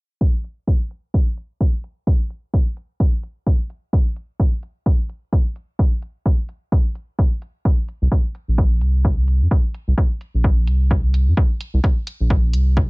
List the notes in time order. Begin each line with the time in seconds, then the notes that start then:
0.21 kick
0.44 closed hi-hat
0.67 kick
0.91 closed hi-hat
1.14 kick
1.37 closed hi-hat
1.61 kick
1.84 closed hi-hat
2.07 kick
2.30 closed hi-hat
2.54 kick, closed hi-hat
2.77 closed hi-hat
3.00 kick
3.23 closed hi-hat
3.47 kick
3.70 closed hi-hat
3.93 kick
4.16 closed hi-hat
4.40 kick, closed hi-hat
4.63 closed hi-hat
4.86 kick
5.09 closed hi-hat
5.33 kick
5.56 closed hi-hat
5.79 kick
6.02 closed hi-hat
6.26 kick, closed hi-hat
6.49 closed hi-hat
6.72 kick
6.95 closed hi-hat
7.19 kick
7.42 closed hi-hat
7.65 kick
7.88 closed hi-hat
8.02 C2
8.12 kick, closed hi-hat
8.35 closed hi-hat
8.48 A#1
8.58 kick
8.81 C2, closed hi-hat
9.05 kick
9.28 closed hi-hat
9.41 F2
9.51 kick
9.74 closed hi-hat
9.88 C2
9.98 kick, closed hi-hat
10.21 closed hi-hat
10.34 A#1
10.44 kick
10.67 C2, closed hi-hat
10.91 kick
11.14 closed hi-hat
11.27 F2
11.37 kick
11.61 closed hi-hat
11.74 C2
11.84 kick, closed hi-hat
12.07 closed hi-hat
12.20 A#1
12.30 kick
12.53 C2, closed hi-hat
12.77 kick